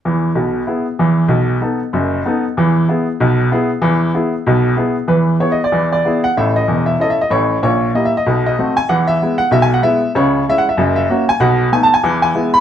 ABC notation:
X:1
M:4/4
L:1/8
Q:"Swing" 1/4=190
K:E
V:1 name="Upright piano"
z8 | z8 | z8 | z8 |
B2 (3c d =d- d d2 f | e d2 e (3d e d c2 | c2 (3d e d- d d2 g | f e2 f (3e g f e2 |
c2 (3e f e- e e2 g | f2 (3g a g- g g2 b |]
V:2 name="Upright piano"
[E,,E,]2 [B,,,B,,]2 [B,EG]2 [E,,E,]2 | [B,,,B,,]2 [B,DA]2 [F,,,F,,]2 [B,DA]2 | [E,,E,]2 [B,EG]2 [B,,,B,,]2 [B,EG]2 | [E,,E,]2 [B,EG]2 [B,,,B,,]2 [B,EG]2 |
[E,,E,]2 [B,EG]2 [E,,E,]2 [B,EG]2 | [A,,,A,,]2 [E,,,E,,]2 [CEA]2 [A,,,A,,]2 | [^A,,,^A,,]2 [^A,E=G]2 [B,,,B,,]2 [=A,=CF]2 | [E,,E,]2 [G,B,E]2 [B,,,B,,]2 [G,B,E]2 |
[C,,C,]2 [G,CE]2 [F,,,F,,]2 [^A,CF]2 | [B,,,B,,]2 [A,B,D]2 [E,,E,]2 [G,B,E]2 |]